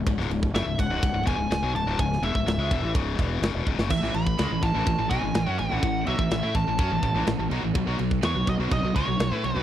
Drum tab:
CC |----------------|----------------|x---------------|----------------|
RD |x-x-x-x-x-x-x-x-|x-x-x-x-x-x-x---|x-x-x-x-x-x-x-x-|x-x-x-x-x-x-x-x-|
SD |-o--o-------o---|-o--o-------o--o|-o--o-------o---|----o-------o---|
BD |o--o--o-o-o-----|o--o--o-o-o---o-|o--o--o-o-o-----|o--o--o-o-o-----|

CC |----------------|
RD |x-x-x-x-x-x-x-x-|
SD |----o-------o---|
BD |o--o--o-o-o-----|